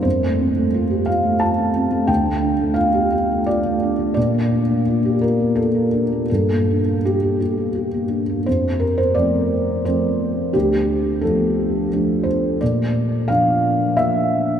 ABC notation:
X:1
M:3/4
L:1/16
Q:1/4=87
K:F
V:1 name="Felt piano"
c6 f2 a4 | g4 f4 d4 | d6 B2 A4 | A4 G4 z4 |
c2 B c d4 c4 | G4 A6 c2 | d4 f4 e4 |]
V:2 name="Felt piano"
F,, A, C A, F G F A, F A, C A, | D,, A, D A, F G F A, F A, D A, | B,, B, D B, F G F B, F B, D B, | G,, B, D B,2 A G B, G B, D B, |
F,,4 [F,A,C]4 [F,A,C]4 | D,,4 [F,A,D]4 [F,A,D]4 | B,,4 [F,B,D]4 [F,B,D]4 |]